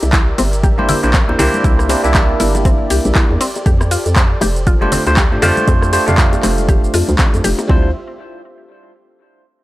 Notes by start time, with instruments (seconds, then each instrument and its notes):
Already playing: analog synth pad G4 A#4 D5 E5
0.03 fm bass C2, closed hi-hat, high bongo, shaker
0.13 synth arpeggio sound E4, kick, clap, closed hi-hat, shaker
0.38 fm bass G1, synth arpeggio sound C4, open hi-hat, ride, high bongo, shaker
0.53 closed hi-hat, shaker
0.63 synth arpeggio sound G4, kick, closed hi-hat, high bongo, shaker
0.78 tine electric piano A#3 D4 E4 G4 C5, high conga
0.89 synth arpeggio sound E4, open hi-hat, ride, low conga, shaker
1.03 fm bass A#1, tine electric piano A#3 D4 E4 G4 C5, closed hi-hat, high bongo, shaker
1.13 synth arpeggio sound C4, kick, clap, closed hi-hat, high conga, shaker
1.28 fm bass E2, tine electric piano A#3 D4 E4 G4 C5, high bongo
1.38 fm bass C2, tine electric piano A#3 D4 E4 G4 C5, synth arpeggio sound G4, open hi-hat, ride, low conga, shaker
1.54 closed hi-hat, high conga, shaker
1.64 fm bass C2, synth arpeggio sound E4, kick, closed hi-hat, high bongo, shaker
1.79 cross-stick, shaker
1.89 tine electric piano A#3 D4 E4 G4 C5, synth arpeggio sound C4, open hi-hat, ride, high bongo, shaker
2.03 fm bass C2, tine electric piano A#3 D4 E4 G4 E5, closed hi-hat, shaker
2.14 synth arpeggio sound G4, kick, clap, closed hi-hat, shaker
2.29 high bongo
2.40 fm bass G1, synth arpeggio sound E4, open hi-hat, ride, shaker
2.55 closed hi-hat, high bongo, high conga, shaker
2.65 synth arpeggio sound C4, kick, closed hi-hat, shaker
2.90 fm bass C2, synth arpeggio sound G4, open hi-hat, ride, high bongo, shaker
3.05 fm bass A#1, closed hi-hat, high conga, shaker
3.15 synth arpeggio sound E4, kick, clap, closed hi-hat, high bongo, shaker
3.30 fm bass E2, high conga
3.41 synth arpeggio sound C4, analog synth pad A4 C5, open hi-hat, ride, shaker
3.56 closed hi-hat, high bongo, shaker
3.66 fm bass F2, synth arpeggio sound G4, kick, closed hi-hat, shaker
3.81 cross-stick, high bongo, shaker
3.91 synth arpeggio sound F4, open hi-hat, ride, shaker
4.06 fm bass F2, closed hi-hat, shaker
4.16 synth arpeggio sound C4, kick, clap, closed hi-hat, high bongo, shaker
4.41 fm bass F1, synth arpeggio sound G4, open hi-hat, ride, high bongo, shaker
4.56 closed hi-hat, shaker
4.67 synth arpeggio sound F4, kick, closed hi-hat, shaker
4.81 tine electric piano A3 D4 F4 G4 C5, high bongo, high conga
4.92 synth arpeggio sound C4, open hi-hat, ride, low conga, shaker
5.06 fm bass D2, tine electric piano A3 D4 F4 G4 C5, closed hi-hat, high bongo, shaker
5.17 synth arpeggio sound G4, kick, clap, closed hi-hat, high conga, shaker
5.31 fm bass A2, tine electric piano A3 D4 F4 G4 C5
5.42 fm bass F2, tine electric piano A3 D4 F4 G4 C5, synth arpeggio sound F4, open hi-hat, ride, high bongo, low conga, shaker
5.57 closed hi-hat, high conga, shaker
5.68 fm bass F2, synth arpeggio sound C4, kick, closed hi-hat, high bongo, shaker
5.82 cross-stick, shaker
5.92 tine electric piano A3 D4 F4 G4 C5, synth arpeggio sound G4, open hi-hat, ride, shaker
6.06 fm bass F2, tine electric piano A3 D4 F4 G4 F5, closed hi-hat, high bongo, low conga, shaker
6.18 synth arpeggio sound F4, kick, clap, closed hi-hat, shaker
6.33 closed hi-hat, high bongo, shaker
6.43 fm bass F1, synth arpeggio sound C4, cross-stick, clap, open hi-hat, ride, shaker
6.58 closed hi-hat, high conga, shaker
6.68 synth arpeggio sound G4, kick, closed hi-hat, high bongo, shaker
6.84 shaker
6.94 fm bass F2, synth arpeggio sound F4, open hi-hat, ride, high bongo, shaker
7.08 fm bass D2, closed hi-hat, high conga, shaker
7.18 synth arpeggio sound C4, kick, clap, closed hi-hat, shaker
7.34 fm bass F2, closed hi-hat, high bongo, high conga, shaker
7.44 fm bass F1, synth arpeggio sound G4, open hi-hat, ride, shaker
7.59 closed hi-hat, high bongo, shaker
7.68 fm bass D2, tine electric piano G3 D4 E4 F4 C5, synth arpeggio sound C4, analog synth pad F4 G4 C5 E5, kick